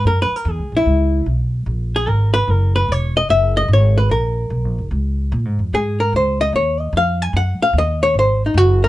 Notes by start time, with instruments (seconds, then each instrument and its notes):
0.05 upright bass F#2, hollow-body jazz guitar A#4
0.22 hollow-body jazz guitar B4
0.31 muted upright bass stroke
0.36 hollow-body jazz guitar A#4
0.45 upright bass E2
0.51 hollow-body jazz guitar G#4
0.58 upright bass C#2
0.72 upright bass A#1
0.77 hollow-body jazz guitar E4
0.86 upright bass C#2
1.26 upright bass B1
1.66 upright bass A#1
1.96 hollow-body jazz guitar G#4
2.07 upright bass G#1, hollow-body jazz guitar A#4
2.34 hollow-body jazz guitar B4
2.48 upright bass F#1, hollow-body jazz guitar A#4
2.76 hollow-body jazz guitar B4
2.88 upright bass E1, hollow-body jazz guitar C#5
3.17 hollow-body jazz guitar D#5
3.29 upright bass F#1, hollow-body jazz guitar E5
3.57 hollow-body jazz guitar D#5
3.68 upright bass G#1
3.73 hollow-body jazz guitar C#5
3.98 hollow-body jazz guitar B4
4.09 upright bass A#1, hollow-body jazz guitar A#4
4.50 upright bass B1
4.64 upright bass A#1
4.78 upright bass F#1
4.91 upright bass C#2
5.32 upright bass A#2
5.45 upright bass G#2
5.59 upright bass F2
5.73 upright bass G#2, hollow-body jazz guitar G#4
6.00 hollow-body jazz guitar A#4
6.13 upright bass C#2, hollow-body jazz guitar C5
6.41 hollow-body jazz guitar D#5
6.52 upright bass D#2, hollow-body jazz guitar C#5
6.80 hollow-body jazz guitar D#5
6.93 upright bass F2
6.97 hollow-body jazz guitar F5
7.22 hollow-body jazz guitar G#5
7.33 upright bass F#2, hollow-body jazz guitar F#5
7.59 hollow-body jazz guitar F5, muted upright bass stroke
7.73 upright bass D#2
7.78 hollow-body jazz guitar D#5
8.03 hollow-body jazz guitar C#5
8.14 upright bass G#1
8.19 hollow-body jazz guitar C5
8.46 hollow-body jazz guitar D#4
8.54 upright bass F#1, hollow-body jazz guitar F#4
8.84 hollow-body jazz guitar A#4